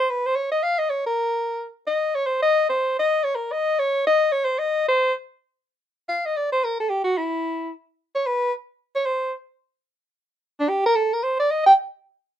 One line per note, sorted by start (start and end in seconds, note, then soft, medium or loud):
0.00 0.11 C5 medium
0.10 0.28 B4 medium
0.26 0.37 C5 medium
0.36 0.51 C#5 medium
0.51 0.64 D#5 medium
0.63 0.80 F5 loud
0.79 0.91 D#5 medium
0.90 1.06 C#5 medium
1.06 1.67 A#4 medium
1.87 2.16 D#5 medium
2.15 2.28 C#5 medium
2.26 2.42 C5 medium
2.42 2.68 D#5 loud
2.69 2.95 C5 medium
2.99 3.25 D#5 loud
3.24 3.37 C#5 medium
3.35 3.53 A#4 medium
3.52 3.81 D#5 loud
3.79 4.06 C#5 loud
4.07 4.34 D#5 loud
4.32 4.46 C#5 loud
4.45 4.60 C5 medium
4.59 4.86 D#5 loud
4.88 5.13 C5 loud
6.09 6.27 F5 medium
6.26 6.38 D#5 medium
6.37 6.52 D5 medium
6.52 6.66 C5 medium
6.64 6.79 A#4 medium
6.80 6.91 A4 medium
6.90 7.04 G4 medium
7.04 7.19 F#4 medium
7.18 7.71 E4 medium
8.15 8.28 C#5 medium
8.26 8.52 B4 medium
8.95 9.07 C#5 medium
9.06 9.33 C5 medium
10.60 10.70 D4 medium
10.69 10.85 G4 medium
10.86 10.97 A#4 loud
10.96 11.15 A4 medium
11.13 11.24 A#4 medium
11.23 11.39 C5 medium
11.40 11.52 D5 loud
11.51 11.66 D#5 medium
11.66 11.73 G5 loud